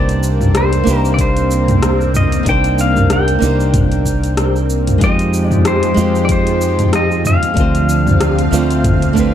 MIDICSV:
0, 0, Header, 1, 6, 480
1, 0, Start_track
1, 0, Key_signature, -3, "minor"
1, 0, Tempo, 638298
1, 1851, Time_signature, 4, 2, 24, 8
1, 7024, End_track
2, 0, Start_track
2, 0, Title_t, "Pedal steel guitar"
2, 0, Program_c, 0, 26
2, 0, Note_on_c, 0, 74, 101
2, 431, Note_on_c, 0, 72, 91
2, 432, Note_off_c, 0, 74, 0
2, 732, Note_off_c, 0, 72, 0
2, 732, Note_on_c, 0, 70, 91
2, 825, Note_off_c, 0, 70, 0
2, 857, Note_on_c, 0, 74, 73
2, 898, Note_off_c, 0, 74, 0
2, 909, Note_on_c, 0, 72, 96
2, 1590, Note_off_c, 0, 72, 0
2, 1628, Note_on_c, 0, 75, 102
2, 1867, Note_off_c, 0, 75, 0
2, 1873, Note_on_c, 0, 79, 119
2, 2108, Note_off_c, 0, 79, 0
2, 2111, Note_on_c, 0, 77, 96
2, 2348, Note_off_c, 0, 77, 0
2, 2351, Note_on_c, 0, 79, 99
2, 3511, Note_off_c, 0, 79, 0
2, 3788, Note_on_c, 0, 75, 102
2, 4104, Note_off_c, 0, 75, 0
2, 4104, Note_on_c, 0, 74, 102
2, 4230, Note_off_c, 0, 74, 0
2, 4267, Note_on_c, 0, 72, 95
2, 4699, Note_on_c, 0, 74, 76
2, 4706, Note_off_c, 0, 72, 0
2, 4738, Note_off_c, 0, 74, 0
2, 4751, Note_on_c, 0, 72, 97
2, 5191, Note_off_c, 0, 72, 0
2, 5231, Note_on_c, 0, 75, 99
2, 5463, Note_off_c, 0, 75, 0
2, 5466, Note_on_c, 0, 77, 110
2, 7024, Note_off_c, 0, 77, 0
2, 7024, End_track
3, 0, Start_track
3, 0, Title_t, "Nylon-string guitar"
3, 0, Program_c, 1, 24
3, 0, Note_on_c, 1, 58, 84
3, 0, Note_on_c, 1, 62, 77
3, 0, Note_on_c, 1, 63, 77
3, 0, Note_on_c, 1, 67, 71
3, 0, Note_on_c, 1, 72, 94
3, 617, Note_off_c, 1, 58, 0
3, 622, Note_off_c, 1, 62, 0
3, 628, Note_off_c, 1, 63, 0
3, 629, Note_on_c, 1, 58, 96
3, 634, Note_off_c, 1, 67, 0
3, 639, Note_on_c, 1, 62, 86
3, 640, Note_off_c, 1, 72, 0
3, 652, Note_on_c, 1, 63, 84
3, 664, Note_on_c, 1, 67, 82
3, 675, Note_on_c, 1, 72, 99
3, 1815, Note_off_c, 1, 58, 0
3, 1820, Note_off_c, 1, 62, 0
3, 1827, Note_off_c, 1, 63, 0
3, 1828, Note_on_c, 1, 58, 88
3, 1833, Note_off_c, 1, 67, 0
3, 1838, Note_off_c, 1, 72, 0
3, 1840, Note_on_c, 1, 62, 78
3, 1852, Note_on_c, 1, 63, 77
3, 1864, Note_on_c, 1, 67, 77
3, 1877, Note_on_c, 1, 72, 97
3, 2534, Note_off_c, 1, 58, 0
3, 2540, Note_off_c, 1, 62, 0
3, 2546, Note_off_c, 1, 63, 0
3, 2547, Note_on_c, 1, 58, 94
3, 2552, Note_off_c, 1, 67, 0
3, 2559, Note_off_c, 1, 72, 0
3, 2559, Note_on_c, 1, 62, 86
3, 2571, Note_on_c, 1, 63, 78
3, 2583, Note_on_c, 1, 67, 87
3, 2595, Note_on_c, 1, 72, 105
3, 3734, Note_off_c, 1, 58, 0
3, 3740, Note_off_c, 1, 62, 0
3, 3746, Note_off_c, 1, 63, 0
3, 3746, Note_on_c, 1, 56, 88
3, 3752, Note_off_c, 1, 67, 0
3, 3758, Note_off_c, 1, 72, 0
3, 3759, Note_on_c, 1, 63, 79
3, 3770, Note_on_c, 1, 65, 81
3, 3782, Note_on_c, 1, 67, 84
3, 3793, Note_on_c, 1, 72, 95
3, 4453, Note_off_c, 1, 56, 0
3, 4460, Note_off_c, 1, 63, 0
3, 4465, Note_off_c, 1, 65, 0
3, 4469, Note_on_c, 1, 56, 94
3, 4471, Note_off_c, 1, 67, 0
3, 4477, Note_off_c, 1, 72, 0
3, 4482, Note_on_c, 1, 63, 84
3, 4492, Note_on_c, 1, 65, 88
3, 4506, Note_on_c, 1, 67, 88
3, 4517, Note_on_c, 1, 72, 98
3, 5655, Note_off_c, 1, 56, 0
3, 5661, Note_off_c, 1, 63, 0
3, 5667, Note_off_c, 1, 65, 0
3, 5669, Note_on_c, 1, 57, 85
3, 5673, Note_off_c, 1, 67, 0
3, 5679, Note_off_c, 1, 72, 0
3, 5680, Note_on_c, 1, 62, 84
3, 5692, Note_on_c, 1, 60, 74
3, 5705, Note_on_c, 1, 65, 84
3, 5717, Note_on_c, 1, 72, 95
3, 6375, Note_off_c, 1, 57, 0
3, 6381, Note_off_c, 1, 62, 0
3, 6387, Note_off_c, 1, 60, 0
3, 6393, Note_off_c, 1, 65, 0
3, 6398, Note_on_c, 1, 57, 90
3, 6399, Note_off_c, 1, 72, 0
3, 6405, Note_on_c, 1, 62, 84
3, 6412, Note_on_c, 1, 60, 85
3, 6417, Note_on_c, 1, 65, 88
3, 6423, Note_on_c, 1, 72, 103
3, 6857, Note_off_c, 1, 57, 0
3, 6866, Note_on_c, 1, 57, 100
3, 6867, Note_off_c, 1, 62, 0
3, 6870, Note_off_c, 1, 60, 0
3, 6873, Note_off_c, 1, 65, 0
3, 6876, Note_off_c, 1, 72, 0
3, 6878, Note_on_c, 1, 62, 95
3, 6890, Note_on_c, 1, 60, 93
3, 6902, Note_on_c, 1, 65, 90
3, 6914, Note_on_c, 1, 71, 108
3, 7024, Note_off_c, 1, 57, 0
3, 7024, Note_off_c, 1, 60, 0
3, 7024, Note_off_c, 1, 62, 0
3, 7024, Note_off_c, 1, 65, 0
3, 7024, Note_off_c, 1, 71, 0
3, 7024, End_track
4, 0, Start_track
4, 0, Title_t, "Analog synth pad"
4, 0, Program_c, 2, 89
4, 0, Note_on_c, 2, 58, 85
4, 0, Note_on_c, 2, 60, 81
4, 3741, Note_off_c, 2, 58, 0
4, 3741, Note_off_c, 2, 60, 0
4, 3772, Note_on_c, 2, 53, 88
4, 3772, Note_on_c, 2, 56, 81
4, 3774, Note_on_c, 2, 67, 98
4, 5673, Note_off_c, 2, 56, 0
4, 5674, Note_off_c, 2, 67, 0
4, 5688, Note_on_c, 2, 50, 92
4, 5689, Note_on_c, 2, 60, 85
4, 5689, Note_on_c, 2, 77, 103
4, 7024, Note_off_c, 2, 50, 0
4, 7024, Note_off_c, 2, 53, 0
4, 7024, Note_off_c, 2, 60, 0
4, 7024, Note_off_c, 2, 77, 0
4, 7024, End_track
5, 0, Start_track
5, 0, Title_t, "Fretless electric bass"
5, 0, Program_c, 3, 35
5, 0, Note_on_c, 3, 36, 95
5, 617, Note_off_c, 3, 36, 0
5, 653, Note_on_c, 3, 36, 93
5, 1817, Note_off_c, 3, 36, 0
5, 1851, Note_on_c, 3, 36, 91
5, 2536, Note_off_c, 3, 36, 0
5, 2572, Note_on_c, 3, 36, 88
5, 3737, Note_off_c, 3, 36, 0
5, 3771, Note_on_c, 3, 41, 88
5, 4456, Note_off_c, 3, 41, 0
5, 4491, Note_on_c, 3, 41, 94
5, 5656, Note_off_c, 3, 41, 0
5, 5691, Note_on_c, 3, 38, 91
5, 6376, Note_off_c, 3, 38, 0
5, 6410, Note_on_c, 3, 38, 96
5, 7020, Note_off_c, 3, 38, 0
5, 7024, End_track
6, 0, Start_track
6, 0, Title_t, "Drums"
6, 67, Note_on_c, 9, 42, 29
6, 70, Note_on_c, 9, 69, 23
6, 142, Note_off_c, 9, 42, 0
6, 146, Note_off_c, 9, 69, 0
6, 175, Note_on_c, 9, 69, 76
6, 250, Note_off_c, 9, 69, 0
6, 306, Note_on_c, 9, 45, 83
6, 310, Note_on_c, 9, 69, 34
6, 382, Note_off_c, 9, 45, 0
6, 385, Note_off_c, 9, 69, 0
6, 411, Note_on_c, 9, 37, 97
6, 411, Note_on_c, 9, 42, 65
6, 415, Note_on_c, 9, 69, 44
6, 487, Note_off_c, 9, 37, 0
6, 487, Note_off_c, 9, 42, 0
6, 490, Note_off_c, 9, 69, 0
6, 546, Note_on_c, 9, 42, 41
6, 550, Note_on_c, 9, 69, 21
6, 621, Note_off_c, 9, 42, 0
6, 625, Note_off_c, 9, 69, 0
6, 655, Note_on_c, 9, 69, 82
6, 730, Note_off_c, 9, 69, 0
6, 790, Note_on_c, 9, 69, 32
6, 865, Note_off_c, 9, 69, 0
6, 891, Note_on_c, 9, 36, 114
6, 892, Note_on_c, 9, 42, 65
6, 896, Note_on_c, 9, 69, 45
6, 966, Note_off_c, 9, 36, 0
6, 967, Note_off_c, 9, 42, 0
6, 971, Note_off_c, 9, 69, 0
6, 1027, Note_on_c, 9, 42, 31
6, 1030, Note_on_c, 9, 69, 22
6, 1102, Note_off_c, 9, 42, 0
6, 1106, Note_off_c, 9, 69, 0
6, 1135, Note_on_c, 9, 69, 72
6, 1210, Note_off_c, 9, 69, 0
6, 1266, Note_on_c, 9, 42, 29
6, 1266, Note_on_c, 9, 45, 75
6, 1270, Note_on_c, 9, 69, 31
6, 1341, Note_off_c, 9, 42, 0
6, 1341, Note_off_c, 9, 45, 0
6, 1345, Note_off_c, 9, 69, 0
6, 1373, Note_on_c, 9, 37, 91
6, 1373, Note_on_c, 9, 42, 57
6, 1376, Note_on_c, 9, 69, 43
6, 1448, Note_off_c, 9, 37, 0
6, 1448, Note_off_c, 9, 42, 0
6, 1451, Note_off_c, 9, 69, 0
6, 1511, Note_on_c, 9, 69, 23
6, 1586, Note_off_c, 9, 69, 0
6, 1612, Note_on_c, 9, 45, 76
6, 1615, Note_on_c, 9, 69, 83
6, 1687, Note_off_c, 9, 45, 0
6, 1690, Note_off_c, 9, 69, 0
6, 1747, Note_on_c, 9, 42, 44
6, 1751, Note_on_c, 9, 69, 36
6, 1822, Note_off_c, 9, 42, 0
6, 1826, Note_off_c, 9, 69, 0
6, 1851, Note_on_c, 9, 36, 120
6, 1852, Note_on_c, 9, 42, 62
6, 1856, Note_on_c, 9, 69, 44
6, 1926, Note_off_c, 9, 36, 0
6, 1927, Note_off_c, 9, 42, 0
6, 1931, Note_off_c, 9, 69, 0
6, 1987, Note_on_c, 9, 42, 31
6, 1990, Note_on_c, 9, 69, 22
6, 2062, Note_off_c, 9, 42, 0
6, 2066, Note_off_c, 9, 69, 0
6, 2095, Note_on_c, 9, 69, 71
6, 2170, Note_off_c, 9, 69, 0
6, 2226, Note_on_c, 9, 45, 88
6, 2230, Note_on_c, 9, 69, 32
6, 2302, Note_off_c, 9, 45, 0
6, 2305, Note_off_c, 9, 69, 0
6, 2331, Note_on_c, 9, 37, 92
6, 2331, Note_on_c, 9, 42, 68
6, 2335, Note_on_c, 9, 69, 46
6, 2406, Note_off_c, 9, 37, 0
6, 2406, Note_off_c, 9, 42, 0
6, 2410, Note_off_c, 9, 69, 0
6, 2465, Note_on_c, 9, 42, 42
6, 2469, Note_on_c, 9, 69, 20
6, 2541, Note_off_c, 9, 42, 0
6, 2544, Note_off_c, 9, 69, 0
6, 2574, Note_on_c, 9, 69, 81
6, 2649, Note_off_c, 9, 69, 0
6, 2708, Note_on_c, 9, 69, 29
6, 2784, Note_off_c, 9, 69, 0
6, 2810, Note_on_c, 9, 36, 115
6, 2810, Note_on_c, 9, 42, 61
6, 2810, Note_on_c, 9, 45, 75
6, 2814, Note_on_c, 9, 69, 42
6, 2885, Note_off_c, 9, 36, 0
6, 2885, Note_off_c, 9, 42, 0
6, 2885, Note_off_c, 9, 45, 0
6, 2889, Note_off_c, 9, 69, 0
6, 2945, Note_on_c, 9, 42, 30
6, 2949, Note_on_c, 9, 69, 22
6, 3020, Note_off_c, 9, 42, 0
6, 3024, Note_off_c, 9, 69, 0
6, 3050, Note_on_c, 9, 36, 62
6, 3053, Note_on_c, 9, 69, 75
6, 3125, Note_off_c, 9, 36, 0
6, 3128, Note_off_c, 9, 69, 0
6, 3185, Note_on_c, 9, 42, 29
6, 3188, Note_on_c, 9, 69, 30
6, 3260, Note_off_c, 9, 42, 0
6, 3264, Note_off_c, 9, 69, 0
6, 3289, Note_on_c, 9, 37, 87
6, 3289, Note_on_c, 9, 42, 63
6, 3293, Note_on_c, 9, 69, 41
6, 3364, Note_off_c, 9, 37, 0
6, 3364, Note_off_c, 9, 42, 0
6, 3368, Note_off_c, 9, 69, 0
6, 3428, Note_on_c, 9, 69, 23
6, 3503, Note_off_c, 9, 69, 0
6, 3533, Note_on_c, 9, 69, 73
6, 3608, Note_off_c, 9, 69, 0
6, 3665, Note_on_c, 9, 42, 47
6, 3665, Note_on_c, 9, 45, 66
6, 3669, Note_on_c, 9, 69, 33
6, 3741, Note_off_c, 9, 42, 0
6, 3741, Note_off_c, 9, 45, 0
6, 3744, Note_off_c, 9, 69, 0
6, 3770, Note_on_c, 9, 36, 121
6, 3770, Note_on_c, 9, 42, 67
6, 3774, Note_on_c, 9, 69, 40
6, 3845, Note_off_c, 9, 36, 0
6, 3845, Note_off_c, 9, 42, 0
6, 3849, Note_off_c, 9, 69, 0
6, 3904, Note_on_c, 9, 42, 31
6, 3907, Note_on_c, 9, 69, 21
6, 3979, Note_off_c, 9, 42, 0
6, 3983, Note_off_c, 9, 69, 0
6, 4013, Note_on_c, 9, 69, 72
6, 4089, Note_off_c, 9, 69, 0
6, 4143, Note_on_c, 9, 45, 86
6, 4146, Note_on_c, 9, 69, 34
6, 4218, Note_off_c, 9, 45, 0
6, 4222, Note_off_c, 9, 69, 0
6, 4249, Note_on_c, 9, 37, 104
6, 4249, Note_on_c, 9, 42, 72
6, 4253, Note_on_c, 9, 69, 42
6, 4325, Note_off_c, 9, 37, 0
6, 4325, Note_off_c, 9, 42, 0
6, 4328, Note_off_c, 9, 69, 0
6, 4383, Note_on_c, 9, 42, 45
6, 4386, Note_on_c, 9, 69, 20
6, 4458, Note_off_c, 9, 42, 0
6, 4462, Note_off_c, 9, 69, 0
6, 4493, Note_on_c, 9, 69, 76
6, 4568, Note_off_c, 9, 69, 0
6, 4627, Note_on_c, 9, 69, 30
6, 4702, Note_off_c, 9, 69, 0
6, 4729, Note_on_c, 9, 42, 67
6, 4730, Note_on_c, 9, 36, 110
6, 4733, Note_on_c, 9, 69, 42
6, 4805, Note_off_c, 9, 36, 0
6, 4805, Note_off_c, 9, 42, 0
6, 4808, Note_off_c, 9, 69, 0
6, 4864, Note_on_c, 9, 42, 31
6, 4867, Note_on_c, 9, 69, 23
6, 4939, Note_off_c, 9, 42, 0
6, 4942, Note_off_c, 9, 69, 0
6, 4974, Note_on_c, 9, 69, 72
6, 5049, Note_off_c, 9, 69, 0
6, 5104, Note_on_c, 9, 42, 32
6, 5104, Note_on_c, 9, 45, 73
6, 5108, Note_on_c, 9, 69, 31
6, 5180, Note_off_c, 9, 42, 0
6, 5180, Note_off_c, 9, 45, 0
6, 5183, Note_off_c, 9, 69, 0
6, 5211, Note_on_c, 9, 37, 100
6, 5211, Note_on_c, 9, 42, 66
6, 5215, Note_on_c, 9, 69, 41
6, 5286, Note_off_c, 9, 37, 0
6, 5286, Note_off_c, 9, 42, 0
6, 5290, Note_off_c, 9, 69, 0
6, 5349, Note_on_c, 9, 69, 22
6, 5425, Note_off_c, 9, 69, 0
6, 5451, Note_on_c, 9, 45, 89
6, 5455, Note_on_c, 9, 69, 72
6, 5526, Note_off_c, 9, 45, 0
6, 5530, Note_off_c, 9, 69, 0
6, 5585, Note_on_c, 9, 42, 48
6, 5589, Note_on_c, 9, 69, 33
6, 5660, Note_off_c, 9, 42, 0
6, 5664, Note_off_c, 9, 69, 0
6, 5690, Note_on_c, 9, 36, 121
6, 5691, Note_on_c, 9, 42, 66
6, 5695, Note_on_c, 9, 69, 41
6, 5765, Note_off_c, 9, 36, 0
6, 5766, Note_off_c, 9, 42, 0
6, 5770, Note_off_c, 9, 69, 0
6, 5826, Note_on_c, 9, 42, 33
6, 5830, Note_on_c, 9, 69, 22
6, 5901, Note_off_c, 9, 42, 0
6, 5905, Note_off_c, 9, 69, 0
6, 5935, Note_on_c, 9, 69, 77
6, 6010, Note_off_c, 9, 69, 0
6, 6066, Note_on_c, 9, 45, 91
6, 6070, Note_on_c, 9, 69, 33
6, 6141, Note_off_c, 9, 45, 0
6, 6145, Note_off_c, 9, 69, 0
6, 6170, Note_on_c, 9, 37, 105
6, 6170, Note_on_c, 9, 42, 73
6, 6174, Note_on_c, 9, 69, 47
6, 6246, Note_off_c, 9, 37, 0
6, 6246, Note_off_c, 9, 42, 0
6, 6249, Note_off_c, 9, 69, 0
6, 6306, Note_on_c, 9, 42, 45
6, 6310, Note_on_c, 9, 69, 21
6, 6381, Note_off_c, 9, 42, 0
6, 6385, Note_off_c, 9, 69, 0
6, 6414, Note_on_c, 9, 69, 78
6, 6490, Note_off_c, 9, 69, 0
6, 6546, Note_on_c, 9, 42, 32
6, 6550, Note_on_c, 9, 69, 31
6, 6621, Note_off_c, 9, 42, 0
6, 6625, Note_off_c, 9, 69, 0
6, 6650, Note_on_c, 9, 36, 112
6, 6651, Note_on_c, 9, 42, 71
6, 6651, Note_on_c, 9, 45, 81
6, 6655, Note_on_c, 9, 69, 40
6, 6725, Note_off_c, 9, 36, 0
6, 6726, Note_off_c, 9, 42, 0
6, 6726, Note_off_c, 9, 45, 0
6, 6730, Note_off_c, 9, 69, 0
6, 6786, Note_on_c, 9, 42, 33
6, 6789, Note_on_c, 9, 69, 21
6, 6861, Note_off_c, 9, 42, 0
6, 6864, Note_off_c, 9, 69, 0
6, 6891, Note_on_c, 9, 36, 60
6, 6895, Note_on_c, 9, 69, 73
6, 6966, Note_off_c, 9, 36, 0
6, 6970, Note_off_c, 9, 69, 0
6, 7024, End_track
0, 0, End_of_file